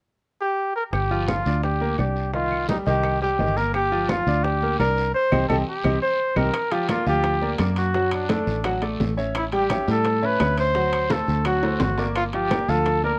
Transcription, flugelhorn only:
0, 0, Header, 1, 2, 480
1, 0, Start_track
1, 0, Key_signature, -2, "minor"
1, 0, Tempo, 350672
1, 1284, Time_signature, 4, 2, 24, 8
1, 18053, End_track
2, 0, Start_track
2, 0, Title_t, "Flugelhorn"
2, 0, Program_c, 0, 56
2, 564, Note_on_c, 0, 67, 86
2, 1011, Note_off_c, 0, 67, 0
2, 1040, Note_on_c, 0, 70, 81
2, 1149, Note_off_c, 0, 70, 0
2, 1267, Note_on_c, 0, 67, 90
2, 1754, Note_on_c, 0, 65, 81
2, 1774, Note_off_c, 0, 67, 0
2, 2227, Note_off_c, 0, 65, 0
2, 2235, Note_on_c, 0, 67, 80
2, 2686, Note_off_c, 0, 67, 0
2, 2715, Note_on_c, 0, 67, 78
2, 3166, Note_off_c, 0, 67, 0
2, 3199, Note_on_c, 0, 65, 92
2, 3647, Note_off_c, 0, 65, 0
2, 3683, Note_on_c, 0, 63, 74
2, 3791, Note_off_c, 0, 63, 0
2, 3921, Note_on_c, 0, 67, 96
2, 4368, Note_off_c, 0, 67, 0
2, 4405, Note_on_c, 0, 67, 101
2, 4881, Note_on_c, 0, 70, 90
2, 4901, Note_off_c, 0, 67, 0
2, 5112, Note_off_c, 0, 70, 0
2, 5120, Note_on_c, 0, 67, 101
2, 5604, Note_on_c, 0, 65, 86
2, 5625, Note_off_c, 0, 67, 0
2, 6070, Note_on_c, 0, 67, 97
2, 6090, Note_off_c, 0, 65, 0
2, 6550, Note_off_c, 0, 67, 0
2, 6558, Note_on_c, 0, 70, 100
2, 7005, Note_off_c, 0, 70, 0
2, 7041, Note_on_c, 0, 72, 109
2, 7487, Note_off_c, 0, 72, 0
2, 7508, Note_on_c, 0, 69, 89
2, 7619, Note_off_c, 0, 69, 0
2, 7765, Note_on_c, 0, 67, 94
2, 8208, Note_off_c, 0, 67, 0
2, 8245, Note_on_c, 0, 72, 104
2, 8726, Note_on_c, 0, 70, 100
2, 8746, Note_off_c, 0, 72, 0
2, 9202, Note_on_c, 0, 67, 92
2, 9223, Note_off_c, 0, 70, 0
2, 9440, Note_off_c, 0, 67, 0
2, 9447, Note_on_c, 0, 65, 84
2, 9666, Note_off_c, 0, 65, 0
2, 9699, Note_on_c, 0, 67, 102
2, 10358, Note_off_c, 0, 67, 0
2, 10641, Note_on_c, 0, 66, 88
2, 11085, Note_off_c, 0, 66, 0
2, 11131, Note_on_c, 0, 62, 83
2, 12029, Note_off_c, 0, 62, 0
2, 12833, Note_on_c, 0, 64, 89
2, 12933, Note_off_c, 0, 64, 0
2, 13076, Note_on_c, 0, 67, 95
2, 13505, Note_off_c, 0, 67, 0
2, 13560, Note_on_c, 0, 69, 102
2, 14033, Note_on_c, 0, 71, 110
2, 14054, Note_off_c, 0, 69, 0
2, 14496, Note_off_c, 0, 71, 0
2, 14504, Note_on_c, 0, 72, 100
2, 15220, Note_on_c, 0, 69, 98
2, 15240, Note_off_c, 0, 72, 0
2, 15687, Note_off_c, 0, 69, 0
2, 15695, Note_on_c, 0, 66, 91
2, 16135, Note_off_c, 0, 66, 0
2, 16178, Note_on_c, 0, 66, 85
2, 16505, Note_off_c, 0, 66, 0
2, 16646, Note_on_c, 0, 65, 94
2, 16753, Note_off_c, 0, 65, 0
2, 16893, Note_on_c, 0, 67, 98
2, 17374, Note_on_c, 0, 69, 103
2, 17394, Note_off_c, 0, 67, 0
2, 17844, Note_off_c, 0, 69, 0
2, 17852, Note_on_c, 0, 70, 97
2, 18053, Note_off_c, 0, 70, 0
2, 18053, End_track
0, 0, End_of_file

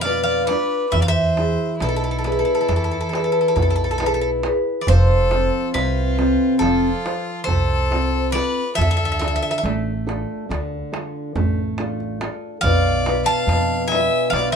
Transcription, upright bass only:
0, 0, Header, 1, 2, 480
1, 0, Start_track
1, 0, Tempo, 874636
1, 514, Time_signature, 9, 3, 24, 8
1, 3871, Tempo, 857143
1, 8073, End_track
2, 0, Start_track
2, 0, Title_t, "Upright bass"
2, 0, Program_c, 0, 32
2, 0, Note_on_c, 0, 41, 78
2, 293, Note_off_c, 0, 41, 0
2, 510, Note_on_c, 0, 40, 97
2, 849, Note_off_c, 0, 40, 0
2, 992, Note_on_c, 0, 35, 96
2, 1331, Note_off_c, 0, 35, 0
2, 1476, Note_on_c, 0, 40, 86
2, 1645, Note_off_c, 0, 40, 0
2, 1957, Note_on_c, 0, 35, 91
2, 2460, Note_off_c, 0, 35, 0
2, 2679, Note_on_c, 0, 29, 96
2, 3013, Note_off_c, 0, 29, 0
2, 3154, Note_on_c, 0, 36, 85
2, 3488, Note_off_c, 0, 36, 0
2, 3626, Note_on_c, 0, 29, 82
2, 3794, Note_off_c, 0, 29, 0
2, 4105, Note_on_c, 0, 36, 85
2, 4615, Note_off_c, 0, 36, 0
2, 4840, Note_on_c, 0, 38, 100
2, 5177, Note_off_c, 0, 38, 0
2, 5316, Note_on_c, 0, 33, 99
2, 5654, Note_off_c, 0, 33, 0
2, 5803, Note_on_c, 0, 38, 92
2, 5970, Note_off_c, 0, 38, 0
2, 6280, Note_on_c, 0, 33, 96
2, 6782, Note_off_c, 0, 33, 0
2, 6994, Note_on_c, 0, 35, 92
2, 7329, Note_off_c, 0, 35, 0
2, 7464, Note_on_c, 0, 41, 86
2, 7801, Note_off_c, 0, 41, 0
2, 7942, Note_on_c, 0, 35, 82
2, 8073, Note_off_c, 0, 35, 0
2, 8073, End_track
0, 0, End_of_file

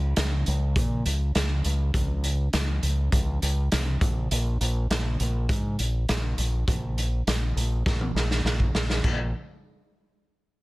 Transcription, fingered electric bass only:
0, 0, Header, 1, 2, 480
1, 0, Start_track
1, 0, Key_signature, -5, "minor"
1, 0, Tempo, 591133
1, 1574, Time_signature, 4, 2, 24, 8
1, 8628, End_track
2, 0, Start_track
2, 0, Title_t, "Fingered electric bass"
2, 0, Program_c, 0, 33
2, 0, Note_on_c, 0, 37, 83
2, 112, Note_off_c, 0, 37, 0
2, 141, Note_on_c, 0, 37, 82
2, 352, Note_off_c, 0, 37, 0
2, 385, Note_on_c, 0, 37, 86
2, 595, Note_off_c, 0, 37, 0
2, 619, Note_on_c, 0, 46, 83
2, 832, Note_off_c, 0, 46, 0
2, 859, Note_on_c, 0, 37, 83
2, 1072, Note_off_c, 0, 37, 0
2, 1099, Note_on_c, 0, 37, 85
2, 1311, Note_off_c, 0, 37, 0
2, 1341, Note_on_c, 0, 37, 79
2, 1553, Note_off_c, 0, 37, 0
2, 1578, Note_on_c, 0, 37, 88
2, 2006, Note_off_c, 0, 37, 0
2, 2059, Note_on_c, 0, 37, 88
2, 2272, Note_off_c, 0, 37, 0
2, 2296, Note_on_c, 0, 37, 85
2, 2510, Note_off_c, 0, 37, 0
2, 2538, Note_on_c, 0, 37, 83
2, 2751, Note_off_c, 0, 37, 0
2, 2781, Note_on_c, 0, 37, 87
2, 2993, Note_off_c, 0, 37, 0
2, 3027, Note_on_c, 0, 36, 84
2, 3236, Note_off_c, 0, 36, 0
2, 3260, Note_on_c, 0, 34, 79
2, 3472, Note_off_c, 0, 34, 0
2, 3503, Note_on_c, 0, 34, 91
2, 3714, Note_off_c, 0, 34, 0
2, 3741, Note_on_c, 0, 34, 86
2, 3953, Note_off_c, 0, 34, 0
2, 3981, Note_on_c, 0, 34, 86
2, 4193, Note_off_c, 0, 34, 0
2, 4223, Note_on_c, 0, 34, 87
2, 4434, Note_off_c, 0, 34, 0
2, 4457, Note_on_c, 0, 44, 86
2, 4671, Note_off_c, 0, 44, 0
2, 4705, Note_on_c, 0, 34, 78
2, 4916, Note_off_c, 0, 34, 0
2, 4949, Note_on_c, 0, 34, 78
2, 5157, Note_off_c, 0, 34, 0
2, 5180, Note_on_c, 0, 34, 76
2, 5393, Note_off_c, 0, 34, 0
2, 5422, Note_on_c, 0, 34, 83
2, 5848, Note_off_c, 0, 34, 0
2, 5903, Note_on_c, 0, 34, 80
2, 6115, Note_off_c, 0, 34, 0
2, 6139, Note_on_c, 0, 34, 77
2, 6352, Note_off_c, 0, 34, 0
2, 6385, Note_on_c, 0, 34, 77
2, 6596, Note_off_c, 0, 34, 0
2, 6616, Note_on_c, 0, 34, 80
2, 6831, Note_off_c, 0, 34, 0
2, 6855, Note_on_c, 0, 34, 75
2, 7070, Note_off_c, 0, 34, 0
2, 7100, Note_on_c, 0, 34, 70
2, 7313, Note_off_c, 0, 34, 0
2, 7342, Note_on_c, 0, 34, 86
2, 7563, Note_off_c, 0, 34, 0
2, 8628, End_track
0, 0, End_of_file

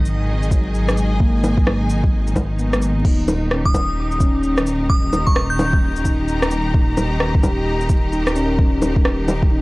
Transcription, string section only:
0, 0, Header, 1, 2, 480
1, 0, Start_track
1, 0, Tempo, 461538
1, 1252, Time_signature, 4, 2, 24, 8
1, 10001, End_track
2, 0, Start_track
2, 0, Title_t, "String section"
2, 0, Program_c, 0, 48
2, 0, Note_on_c, 0, 51, 82
2, 0, Note_on_c, 0, 63, 81
2, 0, Note_on_c, 0, 68, 77
2, 0, Note_on_c, 0, 75, 81
2, 0, Note_on_c, 0, 78, 80
2, 208, Note_on_c, 0, 80, 86
2, 317, Note_off_c, 0, 78, 0
2, 3155, Note_off_c, 0, 51, 0
2, 3168, Note_on_c, 0, 51, 71
2, 3169, Note_off_c, 0, 75, 0
2, 3173, Note_off_c, 0, 68, 0
2, 3175, Note_off_c, 0, 80, 0
2, 3590, Note_on_c, 0, 67, 83
2, 4379, Note_on_c, 0, 82, 93
2, 10001, Note_off_c, 0, 51, 0
2, 10001, Note_off_c, 0, 63, 0
2, 10001, Note_off_c, 0, 67, 0
2, 10001, Note_off_c, 0, 82, 0
2, 10001, End_track
0, 0, End_of_file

